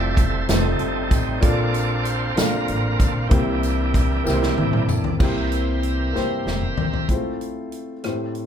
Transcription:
Already playing: upright bass F1, tonewheel organ G3 A3 A4 C5 D5 E5, upright piano A3 C4 E4 F4 C5
0.16 tonewheel organ C5, kick, closed hi-hat, tambourine
0.48 upright bass F1, tonewheel organ G3 A3 C4 D#4 A4, upright piano A3 C4 D#4 F4 B4, snare, closed hi-hat, tambourine
0.57 upright piano C5
0.79 upright bass G1, closed hi-hat
1.11 upright bass A1, kick, closed hi-hat, tambourine
1.40 upright bass A#1, upright piano A#2 A#3 D4 F4 A4 D5, tonewheel organ A#3 C4 D4 F4 A4 D5, kick, closed hi-hat
1.74 closed hi-hat, tambourine
2.03 tonewheel organ C5, closed hi-hat, tambourine
2.35 upright bass A#1, upright piano A#3 D4 F4 A4 F5, tonewheel organ D4 F4 A#4, snare, closed hi-hat, tambourine
2.68 upright bass A1, closed hi-hat
2.98 upright bass A#1, tonewheel organ A4, kick, closed hi-hat, tambourine
3.27 upright bass C2, tonewheel organ E3 A#3 D4 E4 G4, upright piano A#3 C4 E4, kick, closed hi-hat
3.32 upright piano C3 G4 C5
3.63 closed hi-hat, tambourine
3.94 kick, closed hi-hat, tambourine
4.24 upright bass C2, upright piano A#3 C4 E4 G4 A#4, snare, tambourine
4.33 upright piano C5
4.43 snare
4.58 upright bass A1, high tom
4.73 mid tom
4.89 upright bass A#1, mid tom, tambourine
5.04 floor tom
5.19 upright bass C2, upright piano C3 A#3 C4 E4 G4 C5, french horn section E3 G3 A#3 C4, tonewheel organ G4 C5 E5 A#5, kick, crash
5.52 closed hi-hat
5.83 closed hi-hat
6.13 upright bass G2, upright piano A#3 C4 E4 G4 C5, snare
6.46 upright bass F1, snare
6.62 mid tom
6.77 upright bass G1, floor tom
6.93 floor tom
7.08 upright piano G#3 C4 E4 F4 C5, kick, closed hi-hat
7.15 upright piano A3
7.41 closed hi-hat
7.72 closed hi-hat
8.03 upright piano A2 A3 C4 E4 G4 C5, cross-stick, closed hi-hat
8.35 closed hi-hat

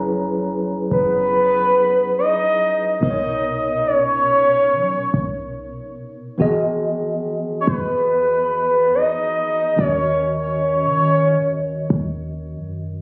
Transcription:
Already playing: 808-style bass F#1, tine electric piano F#3 C#4 E4 G#4 B4 C#5
0.91 808-style bass F#1, soft synth lead B4
2.18 soft synth lead D#5
3.00 808-style bass B1, tine electric piano B2 B3 D#4 A#4 C5, soft synth lead D#5
3.10 tine electric piano C#5
3.87 soft synth lead C#5
4.71 808-style bass F#3
5.14 808-style bass B1
5.77 808-style bass A#1
6.38 808-style bass E1, tine electric piano E3 B3 F#4 G#4 D#5
7.61 soft synth lead C#5
7.67 808-style bass E2, soft synth lead B4
8.95 soft synth lead D#5
9.76 808-style bass D#2, tine electric piano D#3 C#4 F#4 A#4, soft synth lead C#5
9.80 tine electric piano D#5
10.43 soft synth lead C#5
10.84 808-style bass D#3
11.37 808-style bass D#2
11.90 808-style bass D#2
12.54 808-style bass F#2

